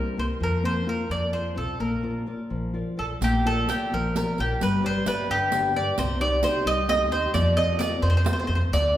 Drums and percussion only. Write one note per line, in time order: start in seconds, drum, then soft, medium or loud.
3.22 riq medium
3.69 riq medium
4.16 riq medium
4.38 riq soft
4.61 riq medium
5.06 riq medium
5.52 riq medium
5.98 riq medium
6.43 riq medium
6.89 riq medium
7.12 riq soft
7.35 riq medium
7.58 riq soft
7.80 riq medium
8.26 riq medium
8.74 riq medium